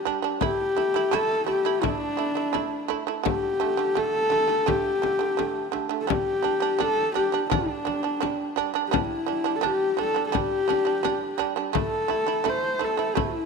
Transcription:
0.05 G3 D4, frame drum
0.22 G3 D4
0.41 A3 E4 G4, frame drum
0.77 A3 E4, frame drum
0.94 A3 E4
1.11 A3 E4 A4, frame drum
1.46 A3 E4 G4, frame drum
1.65 A3 E4
1.82 A3 D4 E4, frame drum
2.17 A3 E4
2.35 A3 E4
2.53 A3 E4, frame drum
2.88 A3 E4, frame drum
3.07 A3 E4
3.23 D3 A3 G4, frame drum
3.60 D3 A3, frame drum
3.77 D3 A3
3.95 D3 A3 A4, frame drum
4.30 D3 A3, frame drum
4.48 D3 A3
4.66 D3 A3 G4, frame drum
5.02 D3 A3, frame drum
5.19 D3 A3
5.37 D3 A3, frame drum
5.72 D3 A3, frame drum
5.89 D3 A3
6.01 A4
6.07 G3 D4 G4, frame drum
6.43 G3 D4, frame drum
6.60 G3 D4
6.79 G3 D4 A4, frame drum
7.14 G3 D4 G4, frame drum
7.32 G3 D4
7.50 G3 D4, frame drum
7.54 D4
7.85 G3 D4, frame drum
8.03 G3 D4
8.20 G3 D4, frame drum
8.56 G3 D4, frame drum
8.74 G3 D4
8.87 G3 G4
8.93 D4 E4, frame drum
9.26 G3 D4
9.44 G3 D4
9.56 A4
9.61 G3 D4, frame drum
9.66 G4
9.97 G3 D4, frame drum
10.02 A4
10.14 G3 D4
10.27 A4
10.32 G3 D4, frame drum
10.36 G4
10.68 G3 D4, frame drum
10.85 G3 D4
11.03 G3 D4, frame drum
11.38 G3 D4, frame drum
11.56 G3 D4
11.73 A3 E4 A4, frame drum
12.08 A3 E4, frame drum
12.27 A3 E4
12.44 A3 E4, frame drum
12.49 C5
12.79 A3 E4, frame drum
12.84 A4
12.97 A3 E4
13.15 A3 E4, frame drum

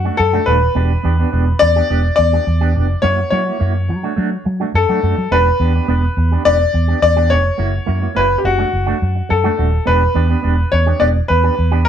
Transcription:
Already playing: F#4
0.05 A3 D4 F#4
0.17 F#2 A4, muted clean electric guitar stroke
0.33 A3 D4 F#4
0.46 D#1 A3 D4 F#4 B4
0.75 E1 B3 D4 G4
1.03 E2 B3 D4 G4
1.19 B3 D4 G4
1.32 E1 B3 D4 G4
1.47 muted clean electric guitar stroke
1.59 E2 D5, muted clean electric guitar stroke
1.76 B3 D4 G4
1.90 E1 B3 D4 G4
2.05 muted clean electric guitar stroke
2.16 E2 D5, muted clean electric guitar stroke
2.33 B3 D4 G4
2.46 E2, muted clean electric guitar stroke
2.61 B3 D4 G4
2.75 F1 B3 D4 G4
3.02 F#2 A#3 E4 F#4 C#5
3.30 F#3 A#3 E4 F#4 C#5
3.46 A#3 E4 F#4
3.60 F#2 A#3 E4 F#4
3.75 muted clean electric guitar stroke
3.88 F#3, muted clean electric guitar stroke
4.03 A3 D4 F#4
4.16 F#3 A3 D4 F#4
4.32 muted clean electric guitar stroke
4.45 F#3, muted clean electric guitar stroke
4.60 A3 D4 F#4
4.74 F#2 A4, muted clean electric guitar stroke
4.89 F#3 A3 D4 F#4
5.02 F#2 A3 F#4
5.18 F#3, muted clean electric guitar stroke
5.31 E1 B3 D4 G4 B4
5.60 E2 B3 D4 G4
5.75 B3 D4 G4
5.88 E1 B3 D4 G4
6.04 muted clean electric guitar stroke
6.17 E2, muted clean electric guitar stroke
6.32 B3 D4 G4
6.45 E1 B3 D4 G4 D5
6.60 muted clean electric guitar stroke
6.73 E2, muted clean electric guitar stroke
6.88 B3 D4 G4
7.02 E2 D5, muted clean electric guitar stroke
7.16 B3 D4 G4
7.29 F1 B3 D4 G4 C#5
7.45 muted clean electric guitar stroke
7.58 F#1 A#3 E4 F#4
7.86 F#2 A#3 E4 F#4
8.02 A#3 E4 F#4
8.15 F#1 A#3 E4 F#4 B4
8.30 muted clean electric guitar stroke
8.38 G4
8.44 F#1 F#4, muted clean electric guitar stroke
8.58 A3 D4 F#4
8.72 F#1, muted clean electric guitar stroke
8.86 A3 D4 F#4
9.02 F#2
9.15 muted clean electric guitar stroke
9.29 F#2 A4, muted clean electric guitar stroke
9.44 A3 D4 F#4
9.57 D#1 A3 D4 F#4
9.73 muted clean electric guitar stroke
9.86 E1 B3 D4 G4 B4
10.14 E2 B3 D4 G4
10.29 B3 D4 G4
10.42 E1 B3 D4 G4
10.59 muted clean electric guitar stroke
10.71 E2 C#5, muted clean electric guitar stroke
10.86 B3 D4 G4
10.99 E1 B3 D4 G4 D5
11.15 muted clean electric guitar stroke
11.28 E2 B4, muted clean electric guitar stroke
11.44 B3 D4 G4
11.57 E2, muted clean electric guitar stroke
11.72 B3 D4 G4
11.85 A#4

